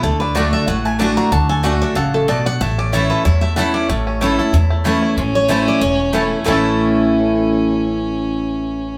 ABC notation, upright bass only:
X:1
M:4/4
L:1/8
Q:"Swing" 1/4=187
K:A
V:1 name="Upright bass" clef=bass
D,,4 A,,,4 | D,,4 A,,,4 | A,,,4 E,,4 | A,,,4 E,,4 |
A,,,4 E,,,4 | A,,,8- | A,,,8 |]